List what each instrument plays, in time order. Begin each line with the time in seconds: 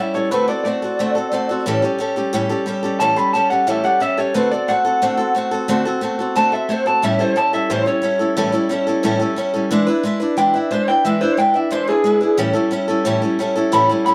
Already playing: steel-string acoustic guitar G3 C#4
0.00 steel-string acoustic guitar E4 A4, clean electric guitar E5
0.14 steel-string acoustic guitar G3 C#4 E4 A4, clean electric guitar C#5
0.31 steel-string acoustic guitar D3 A3 C4 F#4 A4, clean electric guitar B4
0.48 steel-string acoustic guitar C4 F#4 A4, clean electric guitar D5
0.65 steel-string acoustic guitar A3 C4 F#4 A4, clean electric guitar D5
0.82 steel-string acoustic guitar C4 F#4 A4
0.99 steel-string acoustic guitar D3 A3 C4 F#4 A4
1.15 steel-string acoustic guitar C4 F#4 A4
1.32 steel-string acoustic guitar A3 C4 F#4 A4
1.49 steel-string acoustic guitar C4 F#4 A4
1.66 steel-string acoustic guitar A2 E3 G3 C#4 G4 A4
1.82 steel-string acoustic guitar G3 C#4 G4 A4
1.99 steel-string acoustic guitar G3 C#4 G4 A4
2.16 steel-string acoustic guitar G3 C#4 G4 A4
2.33 steel-string acoustic guitar A2 E3 G3 C#4 G4 A4
2.49 steel-string acoustic guitar G3 C#4 G4 A4
2.66 steel-string acoustic guitar G3 C#4 G4 A4
2.83 steel-string acoustic guitar G3 C#4 G4 A4
3.00 steel-string acoustic guitar A2 E3 G3 C#4 G4 A4, clean electric guitar A5
3.16 steel-string acoustic guitar G3 C#4 G4 A4, clean electric guitar B5
3.33 steel-string acoustic guitar G3 C#4 G4 A4, clean electric guitar A5
3.50 steel-string acoustic guitar G3 C#4 G4 A4, clean electric guitar F#5
3.67 steel-string acoustic guitar A2 E3 G3 C#4 G4 A4, clean electric guitar E5
3.84 steel-string acoustic guitar G3 C#4 G4 A4, clean electric guitar F#5
4.00 steel-string acoustic guitar G3 C#4 G4 A4, clean electric guitar E5
4.17 steel-string acoustic guitar G3 C#4 G4 A4, clean electric guitar C#5
4.34 steel-string acoustic guitar D3 A3 C4 F#4 A4, clean electric guitar B4
4.51 steel-string acoustic guitar C4 F#4 A4, clean electric guitar D5
4.68 steel-string acoustic guitar A3 C4 F#4 A4, clean electric guitar F#5
4.85 steel-string acoustic guitar C4 F#4 A4
5.02 steel-string acoustic guitar D3 A3 C4 F#4 A4
5.17 steel-string acoustic guitar C4 F#4 A4
5.35 steel-string acoustic guitar A3 C4 F#4 A4
5.51 steel-string acoustic guitar C4 F#4 A4
5.68 steel-string acoustic guitar D3 A3 C4 F#4 A4
5.85 steel-string acoustic guitar C4 F#4 A4
6.01 steel-string acoustic guitar A3 C4 F#4 A4
6.19 steel-string acoustic guitar C4 F#4 A4
6.36 steel-string acoustic guitar D3 A3 C4 F#4 A4, clean electric guitar A5
6.52 steel-string acoustic guitar C4 F#4 A4, clean electric guitar E5
6.69 steel-string acoustic guitar A3 C4 F#4 A4, clean electric guitar C5
6.86 steel-string acoustic guitar C4 F#4 A4, clean electric guitar A5
7.02 steel-string acoustic guitar A2 E3 G3 C#4 E4 A4, clean electric guitar E5
7.19 steel-string acoustic guitar G3 C#4 E4 A4, clean electric guitar C5
7.36 steel-string acoustic guitar G3 C#4 E4 A4, clean electric guitar A5
7.53 steel-string acoustic guitar G3 C#4 E4 A4, clean electric guitar E5
7.70 steel-string acoustic guitar A2 E3 G3 C#4 E4 A4, clean electric guitar C5
7.86 steel-string acoustic guitar G3 C#4 E4 A4, clean electric guitar C#5
8.02 steel-string acoustic guitar G3 C#4 E4 A4
8.19 steel-string acoustic guitar G3 C#4 E4 A4
8.37 steel-string acoustic guitar A2 E3 G3 C#4 E4 A4
8.52 steel-string acoustic guitar G3 C#4 E4 A4
8.69 steel-string acoustic guitar G3 C#4 E4 A4
8.87 steel-string acoustic guitar G3 C#4 E4 A4
9.03 steel-string acoustic guitar A2 E3 G3 C#4 E4 A4
9.20 steel-string acoustic guitar G3 C#4 E4 A4
9.36 steel-string acoustic guitar G3 C#4 E4 A4
9.54 steel-string acoustic guitar G3 C#4 E4 A4
9.71 steel-string acoustic guitar E3 G#3 D4 E4 B4
9.87 steel-string acoustic guitar D4 E4 B4
10.03 steel-string acoustic guitar G#3 D4 E4 B4
10.20 steel-string acoustic guitar D4 E4 B4
10.37 steel-string acoustic guitar E3 G#3 D4 E4 B4, clean electric guitar G5
10.54 steel-string acoustic guitar D4 E4 B4, clean electric guitar E5
10.71 steel-string acoustic guitar G#3 D4 E4 B4, clean electric guitar C5
10.88 steel-string acoustic guitar D4 E4 B4, clean electric guitar G5
11.05 steel-string acoustic guitar E3 G#3 D4 E4 B4, clean electric guitar E5
11.21 steel-string acoustic guitar D4 E4 B4, clean electric guitar C5
11.37 steel-string acoustic guitar G#3 D4 E4 B4, clean electric guitar G5
11.54 steel-string acoustic guitar D4 E4 B4, clean electric guitar E5
11.71 steel-string acoustic guitar E3 G#3 D4 E4 B4, clean electric guitar C5
11.88 steel-string acoustic guitar D4 E4 B4, clean electric guitar G#4
12.04 steel-string acoustic guitar G#3 D4 E4 B4
12.21 steel-string acoustic guitar D4 E4 B4
12.37 steel-string acoustic guitar A2 E3 G3 C#4 E4 A4
12.53 steel-string acoustic guitar G3 C#4 E4 A4
12.71 steel-string acoustic guitar G3 C#4 E4 A4
12.88 steel-string acoustic guitar G3 C#4 E4 A4
13.05 steel-string acoustic guitar A2 E3 G3 C#4 E4 A4
13.22 steel-string acoustic guitar G3 C#4 E4 A4
13.39 steel-string acoustic guitar G3 C#4 E4 A4
13.56 steel-string acoustic guitar G3 C#4 E4 A4
13.72 steel-string acoustic guitar A2 E3 G3 C#4 E4 A4, clean electric guitar B5
13.89 steel-string acoustic guitar G3 C#4 E4 A4
14.06 steel-string acoustic guitar G3 C#4 E4 A4, clean electric guitar B5